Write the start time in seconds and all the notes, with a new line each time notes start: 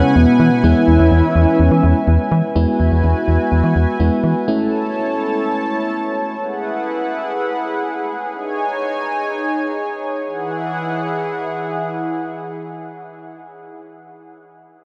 Already playing: G#3 B3 C#4 E4 B4 F#5 G#5
0.16 E2 B3
0.40 E3
0.64 E2 G#3 B3 C#4 E4 E5
0.88 E2
1.00 E2
1.12 E2
1.35 E2
1.59 E2
1.71 E3
1.83 E2
2.07 E2
2.32 E3
2.56 E2 G#3 B3 E4 F#4 B4 E5 G#5
2.80 E2
2.92 E2
3.04 E2
3.28 E2
3.52 E2
3.64 E3
3.76 E2
4.00 E2 G#3 B3 E4
4.24 E3
4.48 A3 C#4 E4 A4 C#5 A5
6.40 E4 G#4 B4 F#5
8.32 D#4 C#5 G#5
10.24 E3 E4 G#4 F#5